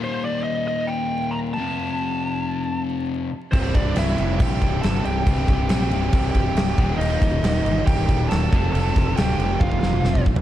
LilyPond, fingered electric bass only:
\new Staff \with { instrumentName = "Fingered electric bass" } { \clef bass \time 4/4 \key f \major \tempo 4 = 138 r1 | r1 | c,,8 c,,8 c,,8 f,,8 bes,,8 c,,8 g,,8 c,,8 | c,,8 c,,8 bes,,8 c,,8 c,,8 c,,8 c,,8 ees,,8 |
ees,,8 ees,,8 ees,,8 g,,8 c,,8 ees,,8 ees,,8 f,,8 | f,,8 f,,8 d,,8 f,,8 f,,8 f,,8 f,,8 bes,,8 | }